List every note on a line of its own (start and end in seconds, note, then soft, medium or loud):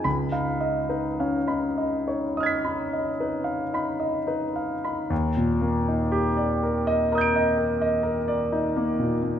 0.04 5.06 C#2 soft
0.04 0.51 B5 soft
0.32 0.79 D#4 soft
0.32 0.79 F5 soft
0.61 1.08 D#5 soft
0.89 1.36 D#4 soft
0.89 1.36 B4 soft
1.19 1.49 C#4 soft
1.19 1.66 F5 soft
1.47 1.95 D#4 soft
1.47 1.95 B5 soft
1.78 2.25 D#5 soft
2.08 2.54 D#4 soft
2.08 2.37 C#5 soft
2.37 2.83 D#5 soft
2.37 5.07 D#6 soft
2.37 5.09 F6 soft
2.43 5.10 G#6 soft
2.43 5.12 B6 soft
2.65 3.09 D#4 soft
2.65 3.09 B5 soft
2.93 3.37 D#5 soft
3.20 3.63 D#4 soft
3.20 3.63 B4 soft
3.44 3.89 F5 soft
3.73 4.17 D#4 soft
3.73 4.18 B5 soft
4.00 4.45 D#5 soft
4.27 4.73 D#4 soft
4.27 4.73 B4 soft
4.56 5.00 F5 soft
4.84 5.11 D#4 soft
4.84 5.11 B5 soft
5.10 9.39 D#2 soft
5.37 5.76 A#2 soft
5.61 6.01 A#3 soft
5.88 6.28 D#4 soft
6.12 6.52 G4 soft
6.37 6.77 D5 soft
6.63 7.01 A#4 soft
6.87 7.24 D#5 medium
7.12 7.48 A#4 soft
7.12 9.39 A#5 soft
7.12 9.39 D#6 soft
7.18 9.39 G6 soft
7.18 9.39 D7 soft
7.36 7.71 D#5 soft
7.58 7.93 A#4 soft
7.82 8.17 D#5 soft
8.03 8.40 A#4 soft
8.28 8.65 D5 soft
8.52 8.89 D#4 soft
8.76 9.13 A#3 soft
8.99 9.37 A#2 soft
9.22 9.39 A#3 soft